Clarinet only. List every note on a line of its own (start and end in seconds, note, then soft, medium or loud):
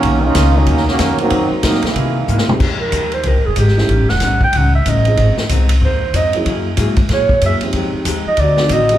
2.81 3.15 A#4 medium
3.14 3.29 C5 medium
3.28 3.48 A#4 medium
3.46 3.61 G#4 medium
3.59 4.11 G4 medium
4.10 4.41 F#5 medium
4.44 4.59 G5 medium
4.57 4.75 F#5 medium
4.75 4.90 E5 medium
4.89 5.39 D#5 medium
5.85 6.18 C5 medium
6.16 6.35 D#5 medium
7.13 7.41 C#5 medium
7.46 7.56 E5 medium
8.28 8.42 D#5 medium
8.41 8.75 D5 medium
8.73 8.98 D#5 loud